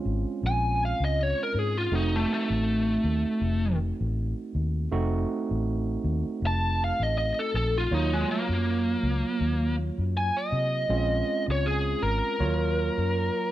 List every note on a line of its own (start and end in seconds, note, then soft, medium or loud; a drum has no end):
0.00 1.89 G#3 medium
0.00 1.89 C4 medium
0.00 1.89 C#4 medium
0.00 1.89 F4 medium
0.05 0.23 G#1 medium
0.26 muted fingered electric bass stroke soft
0.43 0.92 A#1 loud
0.43 0.82 G#5 loud
0.85 1.03 F5 medium
1.00 1.32 C#2 medium
1.04 1.23 D#5 medium
1.23 1.41 C#5 medium
1.43 1.59 A#4 medium
1.55 1.87 G#2 medium
1.59 1.77 G#4 medium
1.77 1.95 F4 medium
1.92 2.24 F1 loud
1.92 4.88 A3 medium
1.92 4.89 C4 medium
1.92 4.89 D#4 medium
1.92 2.15 D#4 medium
1.92 4.89 F#4 medium
2.16 2.31 A3 medium
2.34 3.78 A3 medium
2.50 2.97 A1 medium
3.04 3.22 D#2 medium
3.25 muted fingered electric bass stroke soft
3.41 3.91 F1 loud
4.01 4.32 A1 medium
4.55 4.87 D#2 medium
4.92 5.24 F1 loud
4.92 7.87 A3 medium
4.92 7.87 C4 medium
4.92 7.88 D#4 medium
4.92 7.88 F#4 medium
5.51 5.97 A1 medium
6.04 6.22 D#2 medium
6.26 muted fingered electric bass stroke soft
6.42 6.91 F1 loud
6.47 6.81 A5 loud
6.84 7.02 F5 medium
7.00 7.31 A1 medium
7.00 7.17 D#5 medium
7.18 7.37 D#5 medium
7.39 7.55 A4 medium
7.54 7.86 A#1 medium
7.54 7.75 A4 medium
7.78 7.94 F4 medium
7.91 8.23 D#2 loud
7.91 10.86 F#3 medium
7.91 10.86 A#3 medium
7.91 8.13 D#4 medium
7.91 10.86 F4 medium
7.91 10.86 C#5 medium
8.13 8.29 G#3 medium
8.31 9.75 A#3 loud
8.49 8.95 F#2 medium
9.03 9.21 C#2 medium
9.41 9.89 D#2 loud
9.98 10.30 F#2 medium
10.17 10.36 G#5 loud
10.37 11.45 D#5 loud
10.52 10.84 C3 medium
10.89 11.21 A#1 loud
10.89 12.36 G#3 medium
10.89 12.36 C4 medium
10.89 12.36 C#4 medium
10.89 12.36 F4 medium
11.48 11.94 C#2 medium
11.48 11.66 C#5 medium
11.66 12.02 G#4 medium
12.02 12.20 G#1 medium
12.02 13.52 A#4 medium
12.40 12.88 D#2 loud
12.40 13.52 F#3 medium
12.40 13.52 A#3 medium
12.40 13.52 F4 medium
12.40 13.52 C#5 medium
12.98 13.29 F#2 medium